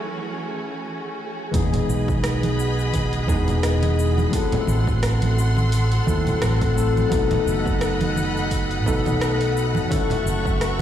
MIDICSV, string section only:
0, 0, Header, 1, 2, 480
1, 0, Start_track
1, 0, Key_signature, 4, "major"
1, 0, Tempo, 697674
1, 1060, Time_signature, 4, 2, 24, 8
1, 7442, End_track
2, 0, Start_track
2, 0, Title_t, "String section"
2, 0, Program_c, 0, 48
2, 0, Note_on_c, 0, 52, 74
2, 0, Note_on_c, 0, 57, 69
2, 0, Note_on_c, 0, 61, 65
2, 0, Note_on_c, 0, 66, 64
2, 1030, Note_off_c, 0, 66, 0
2, 1032, Note_off_c, 0, 57, 0
2, 1039, Note_off_c, 0, 52, 0
2, 1039, Note_off_c, 0, 61, 0
2, 1063, Note_on_c, 0, 83, 91
2, 1065, Note_on_c, 0, 68, 85
2, 1065, Note_on_c, 0, 75, 74
2, 2962, Note_off_c, 0, 83, 0
2, 2963, Note_off_c, 0, 68, 0
2, 2963, Note_off_c, 0, 75, 0
2, 2988, Note_on_c, 0, 78, 78
2, 2988, Note_on_c, 0, 84, 92
2, 2989, Note_on_c, 0, 69, 82
2, 4885, Note_off_c, 0, 84, 0
2, 4906, Note_on_c, 0, 75, 78
2, 4906, Note_on_c, 0, 83, 91
2, 6797, Note_off_c, 0, 69, 0
2, 6804, Note_off_c, 0, 75, 0
2, 6804, Note_off_c, 0, 83, 0
2, 6814, Note_on_c, 0, 85, 92
2, 6815, Note_on_c, 0, 76, 76
2, 6817, Note_on_c, 0, 69, 82
2, 7442, Note_off_c, 0, 69, 0
2, 7442, Note_off_c, 0, 76, 0
2, 7442, Note_off_c, 0, 78, 0
2, 7442, Note_off_c, 0, 85, 0
2, 7442, End_track
0, 0, End_of_file